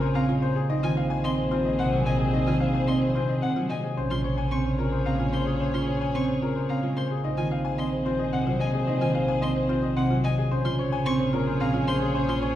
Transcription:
Already playing: A#1 A#2 C#3 G#3 A#3 C#4 G#4 C#5
0.02 C5
0.15 C4 F5 A#5
0.29 G#3 F4
0.42 A#3 C5
0.55 G#4
0.69 A#1 C4 D#4 G#4 C5 D#5
0.83 D#3 F4 G#5
0.97 C5 F5
1.10 G#5
1.24 C4 D#5 C6
1.38 C5
1.51 C4 F4 C5
1.65 D#5
1.79 C3 C4 F#5
1.93 F#3 F4
2.06 G#3 D#5 G#5
2.20 G#4
2.33 C4 D#4 D#5
2.47 D#3 F4 G#5
2.60 C5 F5
2.74 G#5
2.88 C4 D#5 C6
3.02 C5
3.15 C4 F4 C5
3.29 D#5
3.42 C3 C4 F#5
3.56 F#3 F4
3.70 G#3 D#5 G#5
3.84 G#4
3.97 A#1 C#4 G#4 C5 C#5
4.11 C#3 F4 C6
4.24 C5 C#5
4.38 G#5
4.51 C4 C5 C#6
4.65 C5
4.79 F4 A#4
4.92 C5
5.06 A#2 C4 F5 A#5
5.20 G#3 F4
5.32 A#3 C5 C6
5.46 G#4
5.60 C#4 C5
5.74 C#3 F4 C6
5.88 C5 C#5
6.01 G#5
6.15 C4 C5 C#6
6.29 C5
6.42 F4 A#4
6.56 C5
6.69 C4 F5 A#5
6.83 G#3 F4
6.97 A#3 C5 C6
7.11 G#4
7.24 A#1 C4 D#4 G#4 C5 D#5
7.37 D#3 F4 G#5
7.51 C5 F5
7.65 G#5
7.78 C4 D#5 C6
7.92 C5
8.06 C4 F4 C5
8.19 D#5
8.33 C3 C4 F#5
8.46 F#3 F4
8.60 G#3 D#5 G#5
8.74 G#4
8.87 C4 D#4 D#5
9.01 D#3 F4 G#5
9.15 C5 F5
9.28 G#5
9.42 C4 D#5 C6
9.56 C5
9.69 C4 F4 C5
9.83 D#5
9.97 C3 C4 F#5
10.10 F#3 F4
10.24 G#3 D#5 G#5
10.38 G#4
10.51 A#1 C#4 G#4 C5 C#5
10.65 C#3 F4 C6
10.79 C5 C#5
10.92 G#5
11.06 C4 C5 C#6
11.20 C5
11.33 F4 A#4
11.47 C5
11.60 A#2 C4 F5 A#5
11.74 G#3 F4
11.88 A#3 C5 C6
12.02 G#4
12.15 C#4 C5
12.28 C#3 F4 C6
12.42 C5 C#5

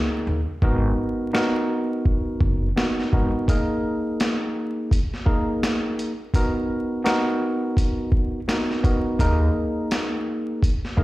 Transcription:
Already playing: A#3 D#4 G#4 A#4
0.27 D#2
0.62 G#1 B3 D#4 F#4 A#4, kick
1.33 B3 D#4 F#4 A#4, snare
2.05 kick
2.41 F#1, kick
2.76 B3 D#4 F#4 A#4, snare
2.99 snare
3.13 G#1 B3 D#4 F#4 A#4, kick
3.48 A#3 D#4 G#4 A#4, kick, closed hi-hat
4.20 snare, closed hi-hat
4.91 kick, closed hi-hat
5.14 snare
5.26 A#3 D#4 G#4 A#4, kick
5.63 snare, closed hi-hat
5.99 closed hi-hat
6.34 B3 D#4 F#4 A#4, kick, closed hi-hat
7.04 B3 D#4 F#4 A#4, snare, closed hi-hat
7.77 kick, closed hi-hat
8.12 kick
8.48 B3 D#4 F#4 A#4, snare, closed hi-hat
8.71 snare
8.84 B3 D#4 F#4 A#4, kick, closed hi-hat
9.19 D#2 A#3 D#4 G#4 A#4, kick, closed hi-hat
9.91 snare, closed hi-hat
10.62 kick, closed hi-hat
10.85 snare
10.97 C#2 A#3 D#4 G#4 A#4, kick

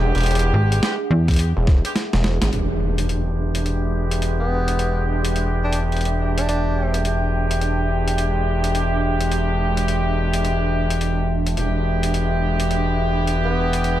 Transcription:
Already playing: G#3 B3 D4 G4 G#4 E5 F#5
0.00 E1
0.15 E1, closed hi-hat
0.18 closed hi-hat
0.21 closed hi-hat
0.23 closed hi-hat
0.26 closed hi-hat
0.31 closed hi-hat
0.35 closed hi-hat
0.39 closed hi-hat
0.54 G#1
0.72 closed hi-hat
0.82 G#3 B3 D4 G4, snare, closed hi-hat
1.11 E2
1.28 kick, snare, closed hi-hat
1.31 closed hi-hat
1.34 closed hi-hat
1.36 closed hi-hat
1.39 closed hi-hat
1.57 E1
1.67 kick, snare
1.85 G#3 B3 D4 G4, closed hi-hat
1.96 snare, closed hi-hat
2.13 E1, snare
2.24 snare
2.42 G#1, snare, closed hi-hat
2.51 E1 G#3 B3 D4 G4, closed hi-hat, impact
2.71 G#3 E5
2.98 closed hi-hat
3.09 closed hi-hat
3.31 G5
3.55 closed hi-hat
3.66 closed hi-hat
4.11 closed hi-hat
4.22 closed hi-hat
4.39 B3
4.68 closed hi-hat
4.79 closed hi-hat
5.25 closed hi-hat
5.36 closed hi-hat
5.64 D4
5.73 closed hi-hat
5.92 closed hi-hat
5.97 closed hi-hat
6.01 closed hi-hat
6.05 closed hi-hat
6.38 D4, closed hi-hat
6.49 D4, closed hi-hat
6.94 closed hi-hat
7.05 G#3 B3 D4 G4, closed hi-hat
7.51 closed hi-hat
7.61 closed hi-hat
8.08 closed hi-hat
8.18 closed hi-hat
8.64 closed hi-hat
8.75 closed hi-hat
9.21 closed hi-hat
9.32 closed hi-hat
9.77 closed hi-hat
9.88 closed hi-hat
10.34 closed hi-hat
10.45 closed hi-hat
10.90 closed hi-hat
11.01 closed hi-hat
11.47 closed hi-hat
11.57 E1 G#3 B3 D4 G4, closed hi-hat
12.03 closed hi-hat
12.14 closed hi-hat
12.37 B5
12.60 closed hi-hat
12.71 closed hi-hat
13.27 closed hi-hat
13.45 B3
13.73 closed hi-hat
13.84 closed hi-hat

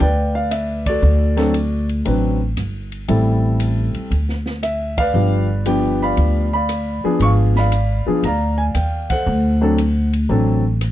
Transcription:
Already playing: F5
0.00 D2 B4 D5 G5, ride
0.35 F5
0.51 E5, cross-stick, hi-hat pedal, ride
0.86 F#4 A4 D5, kick, ride
1.02 D2
1.37 F#3 C4 D4 A4, snare, ride
1.54 hi-hat pedal, ride
1.89 ride
2.05 A1 F#3 C4 D4 B4, ride
2.57 G1, cross-stick, hi-hat pedal, ride
2.92 ride
3.08 A1 G3 C4 E4 A4, ride
3.60 hi-hat pedal, ride
3.94 muted upright bass stroke, ride
4.11 D2, ride
4.29 snare
4.46 snare
4.63 E5, cross-stick, hi-hat pedal, ride
4.98 B4 D5 F5, kick, ride
5.14 G1 F3 B3 D4 G4
5.66 F3 B3 D4 G4 G5, hi-hat pedal, ride
6.02 D5 F5 B5
6.17 D2, ride
6.53 D5 F5 B5
6.69 cross-stick, hi-hat pedal, ride
7.04 F3 B3 D4 G#4, muted upright bass stroke
7.19 G#1 C#6, ride
7.24 F5
7.56 D5 F5 B5, snare
7.72 hi-hat pedal, ride
8.06 F3 B3 D4 G#4, muted upright bass stroke
8.23 D2 F5 A#5, ride
8.27 D5
8.58 G#5
8.74 D#2 G5, cross-stick, hi-hat pedal, ride
9.10 A4 C5 F#5, kick, ride
9.26 D2
9.61 F#3 C4 D4 A4
9.78 hi-hat pedal, ride
10.13 ride
10.29 A1 F#3 C4 D4 A4
10.81 cross-stick, hi-hat pedal, ride

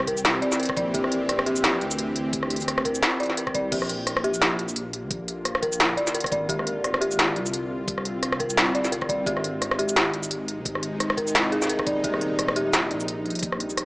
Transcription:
Already playing: C2 E3 C4 G4
0.07 A#4, kick, closed hi-hat
0.17 shaker
0.25 snare, closed hi-hat
0.42 D5, closed hi-hat
0.52 snare, shaker
0.60 A#4, closed hi-hat
0.63 closed hi-hat
0.65 kick, closed hi-hat
0.69 cross-stick
0.77 A#1 D5, kick, closed hi-hat
0.94 G4, kick, closed hi-hat
1.04 cross-stick
1.12 closed hi-hat
1.29 cross-stick, closed hi-hat
1.39 cross-stick
1.46 G4, closed hi-hat
1.56 shaker
1.63 G4, snare, closed hi-hat
1.81 D2, closed hi-hat
1.91 shaker
1.99 closed hi-hat
2.16 closed hi-hat
2.33 kick, closed hi-hat
2.43 cross-stick
2.50 closed hi-hat
2.56 closed hi-hat, shaker
2.62 closed hi-hat
2.68 cross-stick, closed hi-hat
2.78 cross-stick
2.85 A#4, kick, closed hi-hat
2.95 shaker
3.03 snare, closed hi-hat
3.20 D5, closed hi-hat
3.23 closed hi-hat
3.26 snare, closed hi-hat
3.37 A#4, closed hi-hat
3.47 kick, cross-stick
3.54 C2 D5, kick, closed hi-hat
3.64 C2
3.72 A#1 D3 A#3 F4 G4, kick, closed hi-hat, crash
3.82 cross-stick
3.89 closed hi-hat
4.07 cross-stick, closed hi-hat
4.17 cross-stick
4.24 G4, closed hi-hat
4.34 shaker
4.41 G4, snare, closed hi-hat
4.59 A#1, closed hi-hat
4.69 shaker
4.76 closed hi-hat
4.93 closed hi-hat
5.03 D2
5.11 A#1, kick, closed hi-hat
5.28 closed hi-hat
5.45 cross-stick, closed hi-hat
5.55 cross-stick
5.62 A#4, kick, closed hi-hat
5.72 shaker
5.80 snare, closed hi-hat
5.97 D5, closed hi-hat
6.07 snare, shaker
6.14 A#4, closed hi-hat
6.20 kick, cross-stick, closed hi-hat
6.26 closed hi-hat
6.32 G#1 D5, kick, closed hi-hat
6.49 C4 G4, kick, closed hi-hat
6.59 cross-stick
6.67 closed hi-hat
6.84 cross-stick, closed hi-hat
6.94 cross-stick
7.01 G4, closed hi-hat
7.11 shaker
7.19 G4, snare, closed hi-hat
7.36 C2, closed hi-hat
7.46 shaker
7.54 closed hi-hat
7.88 kick, closed hi-hat
7.98 cross-stick
8.05 closed hi-hat
8.23 cross-stick, closed hi-hat
8.32 cross-stick
8.40 A#4, kick, closed hi-hat
8.50 shaker
8.57 C2, snare, closed hi-hat
8.75 D5, closed hi-hat
8.85 snare, shaker
8.92 A#4, closed hi-hat
9.01 kick, cross-stick
9.09 D5, kick, closed hi-hat
9.26 G#1 C3 G#3 D#4 G4, kick, closed hi-hat
9.37 cross-stick
9.44 closed hi-hat
9.62 cross-stick, closed hi-hat
9.71 cross-stick
9.79 G4, closed hi-hat
9.89 shaker
9.96 G4, snare, closed hi-hat
10.13 G#1, closed hi-hat
10.23 shaker
10.31 closed hi-hat
10.48 closed hi-hat
10.58 C2
10.65 G#1, kick, closed hi-hat
10.75 cross-stick
10.83 closed hi-hat
11.00 cross-stick, closed hi-hat
11.10 cross-stick
11.17 A#4, kick, closed hi-hat
11.27 shaker
11.35 snare, closed hi-hat
11.52 G#4, closed hi-hat
11.62 snare, shaker
11.64 snare
11.67 A#4, snare, closed hi-hat
11.79 kick, cross-stick
11.87 D#1 D5, kick, closed hi-hat
12.04 G3 G4, kick, closed hi-hat
12.14 cross-stick
12.21 closed hi-hat
12.39 cross-stick, closed hi-hat
12.48 cross-stick
12.56 G4, closed hi-hat
12.73 G4, snare, closed hi-hat, shaker
12.91 A#1, closed hi-hat
13.00 shaker
13.08 closed hi-hat
13.26 closed hi-hat
13.30 closed hi-hat
13.35 closed hi-hat
13.39 kick, closed hi-hat
13.43 closed hi-hat
13.52 cross-stick
13.60 closed hi-hat
13.70 shaker
13.77 cross-stick, closed hi-hat

